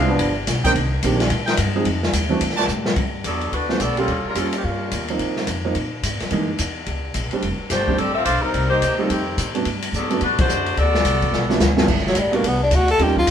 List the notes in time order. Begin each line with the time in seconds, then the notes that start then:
Already playing: C2 D4 G#4 C5 F5
0.07 F3 G3 B3 D4
0.19 G1, kick, ride
0.47 B1, kick, snare, hi-hat pedal, ride
0.64 D#3 A#3 C4 D4 D#4 A#4 C5 G5, kick, ride
0.75 C2, kick, ride
1.03 A#1 D#3 A#3 C4 D4 G4, kick, hi-hat pedal, ride
1.20 snare, ride
1.30 A#2, kick, ride
1.46 D#4 A#4 C5 G5, snare, ride
1.57 G2, kick, hi-hat pedal, ride
1.75 F3 G#3 C4 D#4 G#4
1.85 F2, kick, ride
2.03 snare
2.13 D#2, kick, hi-hat pedal, ride
2.29 E3 A3 C4 D4 F#4
2.41 D2, kick, ride
2.50 snare
2.56 F#4 C5 D5 A5, snare
2.68 A2, hi-hat pedal
2.86 snare
2.96 G2, kick, ride
3.24 E2 F#3 B3 D4 A4, kick, hi-hat pedal, ride
3.41 ride
3.52 D2 A3 D4 F#4 B4, kick, ride
3.69 A3 B3 D4 F#4 C5, snare
3.80 B1 B3 F#4 A4 D5, kick, hi-hat pedal, ride
3.97 G3 A#3 C#4 F4 G4 A4, ride
4.08 D#2, kick, ride
4.25 G3 C#4 F4 A#4, muted upright bass stroke
4.35 F2 F3 G3 A#3 C#4 F4 A4, kick, hi-hat pedal, ride
4.53 F3 A#3 C#4 G4, ride
4.64 G2 G3 A#3 C#4 F4, kick
4.91 D#2, kick, hi-hat pedal, ride
5.08 F3 A#3 C4 D#4, ride
5.19 G#2, kick, ride
5.37 snare
5.47 F2, kick, hi-hat pedal, ride
5.65 F3 A#3 C4 D#4
5.75 A#2, kick, ride
6.03 G#2, kick, hi-hat pedal, ride
6.20 muted upright bass stroke, snare, ride
6.31 F#2 E3 G#3 A#3 D#4, kick, ride
6.59 E2, kick, hi-hat pedal, ride
6.86 C#2, kick, ride
7.14 A#1, kick, hi-hat pedal, ride
7.31 G3 A3 C4 D4, muted upright bass stroke, ride
7.42 F1, kick, ride
7.59 muted upright bass stroke
7.70 G1 A3 D4 G4 C5, kick, snare, hi-hat pedal, ride
7.88 G3 A3 C4 D4, kick
7.98 A1 C4 G4 A4 D5, kick, ride
8.15 C4 F4 A4 E5
8.25 B1 D4 A4 C5 F5, kick, hi-hat pedal, ride
8.41 G3 C4 D#4 A#4, muted upright bass stroke
8.54 C2, kick, ride
8.70 A#3 D#4 G4 C5
8.82 D2, kick, hi-hat pedal, ride
8.98 F3 G3 A3 A#3 C4 D4 D#4 A4
9.10 F2 D#3 A3 C4 G4, kick, ride
9.37 A2, kick, hi-hat pedal, ride
9.54 F#3 A3 B3 D4, ride
9.65 G2, kick, ride
9.82 ride
9.93 G#2 F#3 B3 D4 A4, kick, hi-hat pedal
10.10 F#3 A3 B3 D4, ride
10.21 A2 A3 D4 F#4 B4, kick, ride
10.38 A3 D4 F#4 C5, muted upright bass stroke, kick, ride
10.49 F#2, hi-hat pedal
10.66 ride
10.77 D2 B3 F#4 A4 D5, kick, ride
10.95 snare
11.05 C2, kick, hi-hat pedal, ride
11.22 kick, ride
11.32 B1, snare
11.49 F#3 A3 B3 D4, snare
11.60 D2, snare, hi-hat pedal
11.76 G2 F#3 A3 B3 E4, snare
11.88 G1, kick, crash
11.98 snare
12.07 F#3, snare
12.15 A1, kick, hi-hat pedal, ride
12.20 G3
12.32 G3 A3 A#3 B3 D4 F#4, ride
12.44 C2 B3, kick, ride
12.63 D4
12.71 D2, kick, hi-hat pedal, ride
12.75 F#4
12.88 A4, ride
12.99 D#2 G3 A#3 C#4 D#4 F4 G4, kick, ride
13.17 F4, kick
13.27 A#2, hi-hat pedal, ride